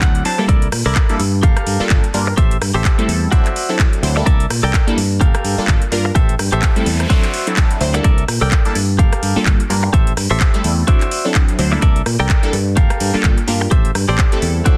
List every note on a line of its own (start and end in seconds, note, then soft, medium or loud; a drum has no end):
0.00 0.20 D2 medium
0.00 0.23 F#3 medium
0.00 0.23 C4 medium
0.00 0.23 D4 medium
0.00 0.23 E4 medium
0.00 0.23 A4 medium
0.00 0.24 F#5 medium
0.00 kick loud
0.00 clap loud
0.00 closed hi-hat medium
0.15 closed hi-hat soft
0.25 0.36 F#3 medium
0.25 0.37 C4 medium
0.25 0.37 D4 medium
0.25 0.37 E4 medium
0.25 0.37 C5 medium
0.25 0.47 A5 medium
0.25 muted clean electric guitar stroke soft
0.25 open hi-hat loud
0.38 0.57 G3 medium
0.38 0.57 A#3 medium
0.38 0.57 D4 medium
0.38 0.57 E4 medium
0.38 0.57 A4 loud
0.38 muted clean electric guitar stroke medium
0.48 0.67 C2 loud
0.48 0.67 E4 loud
0.48 0.67 A4 loud
0.48 0.67 A#4 loud
0.48 0.67 D5 loud
0.48 kick loud
0.48 closed hi-hat medium
0.62 closed hi-hat soft
0.72 0.82 A#2 medium
0.72 cross-stick medium
0.72 open hi-hat loud
0.86 0.93 C2 loud
0.86 1.14 E4 medium
0.86 1.15 A4 medium
0.86 1.15 A#4 medium
0.86 1.15 D5 medium
0.95 kick loud
0.95 clap loud
0.95 closed hi-hat medium
1.09 1.20 G3 loud
1.09 1.20 A#3 medium
1.09 1.20 D4 medium
1.09 1.20 E4 medium
1.09 1.20 A4 loud
1.09 closed hi-hat medium
1.20 1.45 G2 medium
1.20 open hi-hat loud
1.43 1.53 G1 loud
1.43 1.80 G4 medium
1.43 1.80 A4 medium
1.43 1.80 A#4 medium
1.43 1.81 F5 loud
1.43 kick loud
1.43 closed hi-hat medium
1.57 cross-stick medium
1.57 closed hi-hat medium
1.67 1.76 G2 medium
1.67 open hi-hat loud
1.80 1.89 G3 loud
1.80 1.89 A#3 medium
1.80 1.89 D4 medium
1.80 1.89 F4 medium
1.80 1.89 A4 loud
1.80 muted fingered electric bass stroke soft
1.90 2.00 G1 loud
1.90 2.04 G3 medium
1.90 2.04 A#3 medium
1.90 2.04 D4 medium
1.90 2.04 F4 medium
1.90 2.04 A4 loud
1.90 kick loud
1.90 clap loud
1.90 closed hi-hat medium
2.04 closed hi-hat medium
2.14 2.32 G2 medium
2.14 2.34 G3 medium
2.14 2.34 A#3 medium
2.14 2.34 D4 medium
2.14 2.34 F4 medium
2.14 2.34 A#4 loud
2.14 muted clean electric guitar stroke soft
2.14 open hi-hat loud
2.27 muted clean electric guitar stroke medium
2.37 2.55 A1 loud
2.37 2.56 G4 loud
2.37 2.56 A4 medium
2.37 2.56 C5 loud
2.37 2.57 E5 loud
2.37 kick loud
2.37 closed hi-hat medium
2.51 closed hi-hat soft
2.61 2.71 G2 medium
2.61 cross-stick medium
2.61 open hi-hat loud
2.74 2.82 A1 loud
2.74 3.03 G4 loud
2.74 3.04 A4 medium
2.74 3.04 C5 medium
2.74 3.04 E5 medium
2.85 kick loud
2.85 clap loud
2.85 closed hi-hat medium
2.98 3.30 G3 loud
2.98 3.30 A3 medium
2.98 3.30 C4 medium
2.98 3.30 E4 medium
2.98 3.30 A4 loud
2.98 closed hi-hat medium
3.08 3.26 E2 medium
3.08 open hi-hat loud
3.31 3.46 F#3 medium
3.31 3.46 C4 medium
3.31 3.46 D4 medium
3.31 3.46 E4 medium
3.31 3.69 F#4 medium
3.31 3.46 A4 loud
3.31 3.69 C5 medium
3.31 3.69 D5 medium
3.31 3.69 E5 medium
3.31 kick loud
3.31 closed hi-hat medium
3.45 clap soft
3.45 closed hi-hat medium
3.56 open hi-hat loud
3.69 4.01 F#3 medium
3.69 4.01 C4 medium
3.69 4.01 D4 medium
3.69 4.01 E4 medium
3.69 4.01 A4 medium
3.79 kick loud
3.79 clap loud
3.79 closed hi-hat medium
3.93 closed hi-hat medium
4.03 4.21 D2 loud
4.03 4.14 F#3 medium
4.03 4.15 C4 medium
4.03 4.15 D4 medium
4.03 4.15 E4 medium
4.03 4.15 C5 medium
4.03 muted clean electric guitar stroke soft
4.03 open hi-hat loud
4.16 4.35 G3 loud
4.16 4.35 A#3 medium
4.16 4.35 D4 medium
4.16 4.35 E4 medium
4.16 4.35 A4 loud
4.16 muted clean electric guitar stroke medium
4.26 4.44 C2 loud
4.26 4.45 A4 loud
4.26 4.45 A#4 loud
4.26 4.45 D5 loud
4.26 4.45 E5 loud
4.26 kick loud
4.26 closed hi-hat medium
4.40 closed hi-hat medium
4.50 4.60 A#2 medium
4.50 cross-stick medium
4.50 open hi-hat loud
4.63 4.71 C2 loud
4.63 4.92 A4 medium
4.63 4.92 A#4 medium
4.63 4.93 D5 medium
4.63 4.93 G5 medium
4.74 kick loud
4.74 clap loud
4.74 closed hi-hat medium
4.87 4.98 G3 loud
4.87 4.98 A#3 medium
4.87 4.98 D4 medium
4.87 4.98 E4 medium
4.87 4.98 A4 loud
4.87 closed hi-hat medium
4.97 5.23 G2 medium
4.97 open hi-hat loud
5.21 5.31 G1 loud
5.21 5.58 G4 loud
5.21 5.58 A4 medium
5.21 5.58 A#4 medium
5.21 5.58 F5 loud
5.21 kick loud
5.21 closed hi-hat medium
5.35 cross-stick medium
5.35 closed hi-hat medium
5.44 5.54 G2 medium
5.44 open hi-hat medium
5.58 5.67 G3 medium
5.58 5.67 A#3 medium
5.58 5.67 D4 medium
5.58 5.67 F4 medium
5.58 5.67 A4 loud
5.58 muted fingered electric bass stroke soft
5.68 5.78 G1 loud
5.68 5.82 A#3 medium
5.68 kick loud
5.68 clap loud
5.68 closed hi-hat medium
5.82 closed hi-hat medium
5.92 6.10 G2 medium
5.92 6.12 G3 medium
5.92 6.12 A#3 medium
5.92 6.12 D4 medium
5.92 6.12 F4 medium
5.92 6.12 A#4 loud
5.92 muted clean electric guitar stroke soft
5.92 open hi-hat loud
6.05 muted clean electric guitar stroke medium
6.15 6.33 A1 loud
6.15 6.34 G4 loud
6.15 6.34 A4 loud
6.15 6.34 C5 medium
6.15 6.34 E5 loud
6.15 kick loud
6.15 closed hi-hat medium
6.15 noise sweep medium
6.29 closed hi-hat medium
6.39 6.49 G2 medium
6.39 cross-stick medium
6.39 open hi-hat loud
6.52 6.60 A1 loud
6.52 6.81 G4 medium
6.52 6.81 A4 medium
6.52 6.82 C5 medium
6.52 6.82 E5 medium
6.52 closed hi-hat soft
6.62 kick loud
6.62 clap loud
6.62 closed hi-hat medium
6.76 7.08 G3 loud
6.76 7.08 A3 medium
6.76 7.08 C4 medium
6.76 7.08 E4 medium
6.76 7.08 A4 loud
6.76 closed hi-hat medium
6.86 7.04 E2 medium
6.86 open hi-hat loud
7.00 cross-stick medium
7.00 closed hi-hat soft
7.10 7.23 F#3 medium
7.10 7.24 C4 medium
7.10 7.24 D4 medium
7.10 7.24 E4 medium
7.10 7.47 F#4 loud
7.10 7.24 A4 loud
7.10 7.47 C5 medium
7.10 7.47 D5 medium
7.10 7.47 E5 loud
7.10 kick loud
7.10 closed hi-hat medium
7.23 clap soft
7.23 closed hi-hat medium
7.34 open hi-hat loud
7.47 7.78 F#3 medium
7.47 7.78 C4 medium
7.47 7.79 D4 medium
7.47 7.79 E4 medium
7.47 7.79 A4 medium
7.47 closed hi-hat soft
7.57 kick loud
7.57 clap loud
7.57 closed hi-hat medium
7.71 closed hi-hat medium
7.80 7.99 D2 loud
7.80 7.92 F#3 medium
7.80 7.92 C4 medium
7.80 7.92 D4 medium
7.80 7.93 E4 medium
7.80 7.93 C5 medium
7.80 muted clean electric guitar stroke soft
7.80 open hi-hat loud
7.94 8.13 G3 loud
7.94 8.13 A#3 medium
7.94 8.13 D4 medium
7.94 8.13 E4 medium
7.94 8.13 A4 loud
7.94 muted clean electric guitar stroke medium
7.94 closed hi-hat soft
8.04 8.22 C2 loud
8.04 8.23 A4 medium
8.04 8.23 A#4 loud
8.04 8.23 D5 loud
8.04 8.23 E5 loud
8.04 kick loud
8.04 closed hi-hat medium
8.18 closed hi-hat medium
8.28 8.38 A#2 medium
8.28 cross-stick medium
8.28 open hi-hat loud
8.41 8.49 C2 loud
8.41 8.70 A4 medium
8.41 8.70 A#4 medium
8.41 8.71 D5 medium
8.41 8.71 G5 medium
8.51 kick loud
8.51 clap loud
8.51 closed hi-hat medium
8.65 8.76 G3 loud
8.65 8.76 A#3 medium
8.65 8.76 D4 medium
8.65 8.76 E4 medium
8.65 8.76 A4 loud
8.65 closed hi-hat medium
8.75 9.01 G2 medium
8.75 open hi-hat loud
8.99 9.09 G1 loud
8.99 9.36 G4 medium
8.99 9.36 A4 medium
8.99 9.36 A#4 medium
8.99 9.36 F5 loud
8.99 kick loud
8.99 closed hi-hat medium
9.13 cross-stick medium
9.13 closed hi-hat medium
9.23 9.32 G2 medium
9.23 open hi-hat loud
9.36 9.45 G3 loud
9.36 9.45 A#3 medium
9.36 9.45 D4 medium
9.36 9.45 F4 medium
9.36 9.45 A4 loud
9.36 muted fingered electric bass stroke soft
9.46 9.56 G1 loud
9.46 9.60 G3 medium
9.46 9.60 D4 medium
9.46 kick loud
9.46 clap loud
9.46 closed hi-hat medium
9.60 closed hi-hat medium
9.70 9.88 G2 medium
9.70 9.90 G3 medium
9.70 9.90 A#3 medium
9.70 9.90 D4 medium
9.70 9.90 F4 medium
9.70 9.90 A#4 loud
9.70 muted clean electric guitar stroke soft
9.70 open hi-hat loud
9.83 muted clean electric guitar stroke medium
9.93 10.11 A1 loud
9.93 10.12 G4 loud
9.93 10.12 A4 loud
9.93 10.12 C5 medium
9.93 10.12 E5 loud
9.93 kick loud
9.93 closed hi-hat medium
10.07 closed hi-hat medium
10.17 10.27 G2 medium
10.17 cross-stick medium
10.17 open hi-hat loud
10.30 10.38 A1 loud
10.30 10.59 G4 medium
10.30 10.59 A4 medium
10.30 10.59 C5 medium
10.30 10.60 E5 loud
10.40 kick loud
10.40 clap loud
10.40 closed hi-hat medium
10.54 10.86 G3 loud
10.54 10.86 A3 medium
10.54 10.86 C4 medium
10.54 10.86 E4 medium
10.54 10.86 A4 loud
10.54 closed hi-hat medium
10.64 10.82 E2 medium
10.64 open hi-hat loud
10.87 11.02 F#3 loud
10.87 11.02 C4 medium
10.87 11.02 D4 medium
10.87 11.02 E4 medium
10.87 11.25 F#4 medium
10.87 11.02 A4 loud
10.87 11.25 C5 medium
10.87 11.25 D5 medium
10.87 11.25 E5 loud
10.87 kick loud
10.87 closed hi-hat medium
11.01 clap soft
11.01 closed hi-hat medium
11.11 open hi-hat loud
11.25 11.56 F#3 medium
11.25 11.56 C4 medium
11.25 11.57 D4 medium
11.25 11.57 E4 medium
11.25 11.57 A4 medium
11.35 kick loud
11.35 clap loud
11.35 closed hi-hat medium
11.48 closed hi-hat medium
11.59 11.77 D2 loud
11.59 11.70 F#3 medium
11.59 11.70 C4 medium
11.59 11.70 D4 medium
11.59 11.71 E4 medium
11.59 11.71 C5 medium
11.59 muted clean electric guitar stroke soft
11.59 open hi-hat loud
11.72 11.91 G3 medium
11.72 11.91 A#3 medium
11.72 11.91 D4 medium
11.72 11.91 E4 medium
11.72 11.91 A4 loud
11.72 muted clean electric guitar stroke medium
11.82 12.00 C2 loud
11.82 12.01 A4 loud
11.82 12.01 A#4 medium
11.82 12.01 D5 loud
11.82 12.01 E5 loud
11.82 kick loud
11.82 closed hi-hat medium
11.96 closed hi-hat soft
12.06 12.16 A#2 medium
12.06 cross-stick medium
12.06 open hi-hat loud
12.20 12.27 C2 loud
12.20 12.48 A4 medium
12.20 12.48 A#4 medium
12.20 12.48 D5 medium
12.20 12.49 G5 loud
12.29 kick loud
12.29 clap loud
12.29 closed hi-hat medium
12.43 12.53 G3 loud
12.43 12.53 A#3 loud
12.43 12.53 D4 medium
12.43 12.54 E4 loud
12.43 12.54 A4 loud
12.43 closed hi-hat medium
12.53 12.78 G2 medium
12.53 open hi-hat loud
12.77 12.87 G1 loud
12.77 13.14 G4 medium
12.77 13.14 A4 medium
12.77 13.14 A#4 medium
12.77 13.14 F5 loud
12.77 kick loud
12.77 closed hi-hat medium
12.90 cross-stick medium
12.90 closed hi-hat medium
13.00 13.10 G2 medium
13.00 open hi-hat loud
13.14 13.23 G3 loud
13.14 13.23 A#3 medium
13.14 13.23 D4 medium
13.14 13.23 F4 medium
13.14 13.23 A4 loud
13.14 muted fingered electric bass stroke soft
13.23 13.34 G1 loud
13.23 13.38 G3 medium
13.23 kick loud
13.23 clap loud
13.23 closed hi-hat medium
13.38 closed hi-hat medium
13.47 13.66 G2 medium
13.47 13.67 G3 medium
13.47 13.67 A#3 medium
13.47 13.68 D4 medium
13.47 13.68 F4 medium
13.47 13.68 A#4 loud
13.47 muted clean electric guitar stroke soft
13.47 open hi-hat loud
13.61 muted clean electric guitar stroke medium
13.71 13.89 A1 loud
13.71 13.90 G4 loud
13.71 13.90 A4 medium
13.71 13.90 C5 loud
13.71 13.90 E5 loud
13.71 kick loud
13.71 closed hi-hat medium
13.85 closed hi-hat soft
13.95 14.05 G2 medium
13.95 cross-stick medium
13.95 open hi-hat loud
14.08 14.16 A1 loud
14.08 14.37 G4 medium
14.08 14.38 A4 medium
14.08 14.38 C5 medium
14.08 14.38 D5 loud
14.18 kick loud
14.18 clap loud
14.18 closed hi-hat medium
14.32 14.64 G3 loud
14.32 14.64 A3 medium
14.32 14.64 C4 medium
14.32 14.64 E4 medium
14.32 14.64 A4 loud
14.32 closed hi-hat medium
14.42 14.60 E2 medium
14.42 open hi-hat loud
14.65 14.77 F#3 medium
14.65 14.77 C4 medium
14.65 14.77 D4 medium
14.65 14.77 E4 medium
14.65 14.77 F#4 medium
14.65 14.77 A4 loud
14.65 14.77 C5 medium
14.65 14.77 D5 medium
14.65 14.77 E5 medium
14.65 kick loud
14.65 closed hi-hat medium